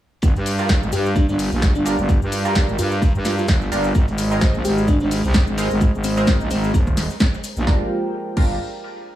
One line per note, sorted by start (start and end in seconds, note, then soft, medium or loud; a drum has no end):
0.22 0.34 G1 loud
0.22 3.91 G4 medium
0.22 3.91 F5 medium
0.22 7.63 A#5 medium
0.22 kick loud
0.22 closed hi-hat medium
0.22 cabasa medium
0.36 0.80 G2 loud
0.36 closed hi-hat soft
0.36 cabasa soft
0.46 snare soft
0.46 closed hi-hat medium
0.46 open hi-hat loud
0.46 cabasa medium
0.59 1.83 G3 medium
0.59 1.83 D4 medium
0.59 1.83 F4 medium
0.59 1.83 A#4 loud
0.59 cabasa soft
0.69 kick loud
0.69 snare loud
0.69 closed hi-hat medium
0.69 cabasa medium
0.82 0.91 G#1 loud
0.82 cabasa soft
0.92 1.27 G2 loud
0.92 1.09 G4 medium
0.92 closed hi-hat medium
0.92 open hi-hat medium
0.92 cabasa loud
1.06 cabasa soft
1.16 1.24 D4 medium
1.16 kick loud
1.16 closed hi-hat medium
1.16 cabasa medium
1.29 1.50 G1 loud
1.29 1.36 D4 medium
1.29 snare soft
1.29 cabasa soft
1.39 open hi-hat medium
1.39 open hi-hat loud
1.39 cabasa medium
1.52 1.73 A#1 loud
1.52 cabasa soft
1.62 kick loud
1.62 snare loud
1.62 closed hi-hat medium
1.62 cabasa soft
1.75 1.97 G1 medium
1.75 1.82 D4 medium
1.75 cabasa soft
1.85 1.98 G3 loud
1.85 1.98 D4 medium
1.85 1.94 D4 medium
1.85 1.98 F4 medium
1.85 1.98 A#4 loud
1.85 closed hi-hat medium
1.85 open hi-hat medium
1.85 cabasa medium
1.99 2.20 G1 loud
1.99 cabasa soft
2.09 kick loud
2.09 closed hi-hat medium
2.09 cabasa medium
2.22 2.67 G2 loud
2.22 cabasa soft
2.32 closed hi-hat medium
2.32 open hi-hat loud
2.32 cabasa loud
2.45 3.69 G3 loud
2.45 3.69 D4 medium
2.45 3.69 F4 medium
2.45 3.69 A#4 loud
2.45 closed hi-hat soft
2.45 cabasa soft
2.55 kick loud
2.55 snare loud
2.55 closed hi-hat medium
2.55 cabasa medium
2.68 2.77 G#1 loud
2.68 cabasa soft
2.79 3.13 G2 loud
2.79 2.95 F4 loud
2.79 closed hi-hat medium
2.79 open hi-hat medium
2.79 cabasa loud
2.92 snare soft
2.92 cabasa soft
3.02 kick loud
3.02 closed hi-hat medium
3.02 cabasa medium
3.15 3.47 G2 loud
3.15 cabasa soft
3.25 3.34 F4 medium
3.25 snare medium
3.25 snare soft
3.25 closed hi-hat medium
3.25 open hi-hat loud
3.25 cabasa medium
3.38 3.45 F4 medium
3.38 snare soft
3.38 cabasa soft
3.48 3.70 G1 loud
3.48 kick loud
3.48 snare loud
3.48 closed hi-hat medium
3.48 cabasa medium
3.61 snare medium
3.61 cabasa soft
3.72 3.93 G1 loud
3.72 3.84 G3 medium
3.72 3.84 D4 medium
3.72 3.84 F4 medium
3.72 3.84 A#4 loud
3.72 closed hi-hat medium
3.72 open hi-hat medium
3.72 cabasa medium
3.84 snare medium
3.84 cabasa soft
3.95 4.06 G#1 loud
3.95 7.63 G#4 medium
3.95 7.63 C5 medium
3.95 kick loud
3.95 closed hi-hat medium
3.95 cabasa medium
4.08 4.53 G#1 loud
4.08 closed hi-hat soft
4.08 cabasa soft
4.18 snare soft
4.18 closed hi-hat medium
4.18 open hi-hat loud
4.18 cabasa medium
4.31 5.55 G#3 medium
4.31 5.55 C4 medium
4.31 5.55 D#4 medium
4.31 5.55 A#4 loud
4.31 cabasa soft
4.41 kick loud
4.41 snare loud
4.41 closed hi-hat medium
4.41 cabasa medium
4.54 4.63 A#1 loud
4.54 cabasa soft
4.65 4.99 G#1 loud
4.65 4.81 G4 medium
4.65 closed hi-hat medium
4.65 open hi-hat loud
4.65 cabasa medium
4.78 cabasa soft
4.88 4.96 D4 medium
4.88 kick loud
4.88 closed hi-hat medium
4.88 cabasa medium
5.00 5.22 G#1 loud
5.00 5.08 D4 medium
5.00 snare medium
5.00 cabasa soft
5.11 open hi-hat loud
5.11 open hi-hat medium
5.11 cabasa medium
5.24 5.46 C2 loud
5.24 cabasa soft
5.34 kick loud
5.34 snare loud
5.34 closed hi-hat medium
5.34 cabasa medium
5.47 5.69 G#1 loud
5.47 cabasa soft
5.58 5.70 G#3 loud
5.58 5.70 C4 medium
5.58 5.70 D#4 medium
5.58 5.70 A#4 loud
5.58 closed hi-hat medium
5.58 open hi-hat medium
5.58 cabasa loud
5.71 5.92 G#1 loud
5.71 cabasa soft
5.81 kick loud
5.81 closed hi-hat medium
5.81 cabasa medium
5.94 6.39 G#1 loud
5.94 cabasa soft
6.04 6.15 C4 medium
6.04 closed hi-hat medium
6.04 open hi-hat loud
6.04 cabasa loud
6.17 7.41 G#3 loud
6.17 6.32 C4 medium
6.17 7.41 C4 medium
6.17 7.41 D#4 medium
6.17 7.41 A#4 loud
6.17 closed hi-hat soft
6.17 cabasa soft
6.27 kick loud
6.27 snare loud
6.27 closed hi-hat medium
6.27 cabasa medium
6.41 6.49 A#1 loud
6.41 cabasa soft
6.51 6.72 G#1 loud
6.51 6.59 C4 medium
6.51 closed hi-hat medium
6.51 open hi-hat medium
6.51 cabasa medium
6.64 6.70 C4 medium
6.64 snare soft
6.64 cabasa soft
6.74 7.08 D#1 medium
6.74 kick loud
6.74 closed hi-hat medium
6.74 cabasa medium
6.87 kick medium
6.87 cabasa soft
6.97 snare medium
6.97 snare soft
6.97 closed hi-hat medium
6.97 open hi-hat loud
6.97 cabasa medium
7.10 snare soft
7.10 cabasa soft
7.20 kick loud
7.20 snare loud
7.20 closed hi-hat medium
7.20 cabasa medium
7.34 snare medium
7.34 cabasa soft
7.44 closed hi-hat medium
7.44 open hi-hat medium
7.44 cabasa medium
7.57 7.65 A#1 loud
7.57 snare medium
7.57 cabasa soft
7.67 7.81 G1 loud
7.67 7.81 G3 medium
7.67 7.81 D4 medium
7.67 7.81 F4 medium
7.67 7.89 F4 medium
7.67 7.81 A#4 medium
7.67 7.89 A#4 medium
7.67 7.89 G5 medium
7.67 kick loud
7.67 snare medium
8.37 8.59 G1 loud
8.37 8.55 G3 medium
8.37 8.55 D4 medium
8.37 8.55 F4 medium
8.37 8.55 A#4 loud
8.37 kick loud
8.37 crash medium